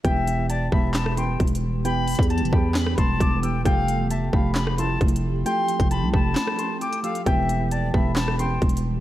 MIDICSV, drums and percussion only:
0, 0, Header, 1, 2, 480
1, 0, Start_track
1, 0, Tempo, 451128
1, 49, Time_signature, 4, 2, 24, 8
1, 9578, End_track
2, 0, Start_track
2, 0, Title_t, "Drums"
2, 49, Note_on_c, 9, 36, 110
2, 49, Note_on_c, 9, 42, 76
2, 155, Note_off_c, 9, 36, 0
2, 155, Note_off_c, 9, 42, 0
2, 293, Note_on_c, 9, 42, 76
2, 399, Note_off_c, 9, 42, 0
2, 528, Note_on_c, 9, 42, 82
2, 635, Note_off_c, 9, 42, 0
2, 768, Note_on_c, 9, 36, 88
2, 875, Note_off_c, 9, 36, 0
2, 1000, Note_on_c, 9, 39, 96
2, 1009, Note_on_c, 9, 38, 120
2, 1012, Note_on_c, 9, 42, 79
2, 1106, Note_off_c, 9, 39, 0
2, 1115, Note_off_c, 9, 38, 0
2, 1118, Note_off_c, 9, 42, 0
2, 1128, Note_on_c, 9, 37, 103
2, 1234, Note_off_c, 9, 37, 0
2, 1249, Note_on_c, 9, 42, 80
2, 1355, Note_off_c, 9, 42, 0
2, 1489, Note_on_c, 9, 36, 98
2, 1489, Note_on_c, 9, 42, 47
2, 1569, Note_off_c, 9, 42, 0
2, 1569, Note_on_c, 9, 42, 66
2, 1595, Note_off_c, 9, 36, 0
2, 1649, Note_off_c, 9, 42, 0
2, 1649, Note_on_c, 9, 42, 82
2, 1755, Note_off_c, 9, 42, 0
2, 1969, Note_on_c, 9, 42, 78
2, 2075, Note_off_c, 9, 42, 0
2, 2209, Note_on_c, 9, 42, 76
2, 2213, Note_on_c, 9, 46, 83
2, 2289, Note_off_c, 9, 42, 0
2, 2289, Note_on_c, 9, 42, 72
2, 2319, Note_off_c, 9, 46, 0
2, 2328, Note_on_c, 9, 36, 93
2, 2369, Note_off_c, 9, 42, 0
2, 2369, Note_on_c, 9, 42, 64
2, 2434, Note_off_c, 9, 36, 0
2, 2449, Note_off_c, 9, 42, 0
2, 2449, Note_on_c, 9, 42, 55
2, 2529, Note_off_c, 9, 42, 0
2, 2529, Note_on_c, 9, 42, 51
2, 2609, Note_off_c, 9, 42, 0
2, 2609, Note_on_c, 9, 42, 46
2, 2688, Note_on_c, 9, 36, 88
2, 2715, Note_off_c, 9, 42, 0
2, 2795, Note_off_c, 9, 36, 0
2, 2920, Note_on_c, 9, 39, 95
2, 2929, Note_on_c, 9, 38, 123
2, 2932, Note_on_c, 9, 42, 75
2, 3026, Note_off_c, 9, 39, 0
2, 3035, Note_off_c, 9, 38, 0
2, 3039, Note_off_c, 9, 42, 0
2, 3048, Note_on_c, 9, 37, 103
2, 3154, Note_off_c, 9, 37, 0
2, 3168, Note_on_c, 9, 36, 98
2, 3169, Note_on_c, 9, 42, 88
2, 3275, Note_off_c, 9, 36, 0
2, 3275, Note_off_c, 9, 42, 0
2, 3409, Note_on_c, 9, 36, 98
2, 3413, Note_on_c, 9, 42, 75
2, 3515, Note_off_c, 9, 36, 0
2, 3519, Note_off_c, 9, 42, 0
2, 3652, Note_on_c, 9, 42, 74
2, 3758, Note_off_c, 9, 42, 0
2, 3889, Note_on_c, 9, 36, 107
2, 3889, Note_on_c, 9, 42, 76
2, 3995, Note_off_c, 9, 36, 0
2, 3995, Note_off_c, 9, 42, 0
2, 4133, Note_on_c, 9, 42, 79
2, 4239, Note_off_c, 9, 42, 0
2, 4368, Note_on_c, 9, 42, 80
2, 4475, Note_off_c, 9, 42, 0
2, 4609, Note_on_c, 9, 36, 87
2, 4715, Note_off_c, 9, 36, 0
2, 4840, Note_on_c, 9, 39, 98
2, 4849, Note_on_c, 9, 38, 118
2, 4852, Note_on_c, 9, 42, 74
2, 4946, Note_off_c, 9, 39, 0
2, 4955, Note_off_c, 9, 38, 0
2, 4959, Note_off_c, 9, 42, 0
2, 4968, Note_on_c, 9, 37, 105
2, 5075, Note_off_c, 9, 37, 0
2, 5089, Note_on_c, 9, 42, 79
2, 5196, Note_off_c, 9, 42, 0
2, 5329, Note_on_c, 9, 36, 97
2, 5329, Note_on_c, 9, 42, 46
2, 5409, Note_off_c, 9, 42, 0
2, 5409, Note_on_c, 9, 42, 62
2, 5436, Note_off_c, 9, 36, 0
2, 5489, Note_off_c, 9, 42, 0
2, 5489, Note_on_c, 9, 42, 78
2, 5595, Note_off_c, 9, 42, 0
2, 5809, Note_on_c, 9, 42, 73
2, 5916, Note_off_c, 9, 42, 0
2, 6049, Note_on_c, 9, 42, 64
2, 6155, Note_off_c, 9, 42, 0
2, 6168, Note_on_c, 9, 36, 93
2, 6169, Note_on_c, 9, 42, 63
2, 6274, Note_off_c, 9, 36, 0
2, 6275, Note_off_c, 9, 42, 0
2, 6288, Note_on_c, 9, 42, 82
2, 6395, Note_off_c, 9, 42, 0
2, 6529, Note_on_c, 9, 36, 87
2, 6635, Note_off_c, 9, 36, 0
2, 6760, Note_on_c, 9, 39, 93
2, 6769, Note_on_c, 9, 38, 120
2, 6772, Note_on_c, 9, 42, 77
2, 6867, Note_off_c, 9, 39, 0
2, 6875, Note_off_c, 9, 38, 0
2, 6879, Note_off_c, 9, 42, 0
2, 6888, Note_on_c, 9, 37, 105
2, 6995, Note_off_c, 9, 37, 0
2, 7009, Note_on_c, 9, 42, 88
2, 7115, Note_off_c, 9, 42, 0
2, 7249, Note_on_c, 9, 42, 49
2, 7355, Note_off_c, 9, 42, 0
2, 7369, Note_on_c, 9, 42, 81
2, 7475, Note_off_c, 9, 42, 0
2, 7489, Note_on_c, 9, 42, 75
2, 7595, Note_off_c, 9, 42, 0
2, 7609, Note_on_c, 9, 42, 46
2, 7715, Note_off_c, 9, 42, 0
2, 7729, Note_on_c, 9, 36, 108
2, 7729, Note_on_c, 9, 42, 74
2, 7835, Note_off_c, 9, 36, 0
2, 7835, Note_off_c, 9, 42, 0
2, 7973, Note_on_c, 9, 42, 78
2, 8079, Note_off_c, 9, 42, 0
2, 8208, Note_on_c, 9, 42, 78
2, 8315, Note_off_c, 9, 42, 0
2, 8449, Note_on_c, 9, 36, 87
2, 8555, Note_off_c, 9, 36, 0
2, 8680, Note_on_c, 9, 39, 96
2, 8689, Note_on_c, 9, 38, 120
2, 8693, Note_on_c, 9, 42, 77
2, 8787, Note_off_c, 9, 39, 0
2, 8796, Note_off_c, 9, 38, 0
2, 8799, Note_off_c, 9, 42, 0
2, 8809, Note_on_c, 9, 37, 102
2, 8915, Note_off_c, 9, 37, 0
2, 8929, Note_on_c, 9, 42, 79
2, 9036, Note_off_c, 9, 42, 0
2, 9169, Note_on_c, 9, 36, 99
2, 9169, Note_on_c, 9, 42, 48
2, 9249, Note_off_c, 9, 42, 0
2, 9249, Note_on_c, 9, 42, 64
2, 9276, Note_off_c, 9, 36, 0
2, 9329, Note_off_c, 9, 42, 0
2, 9329, Note_on_c, 9, 42, 77
2, 9435, Note_off_c, 9, 42, 0
2, 9578, End_track
0, 0, End_of_file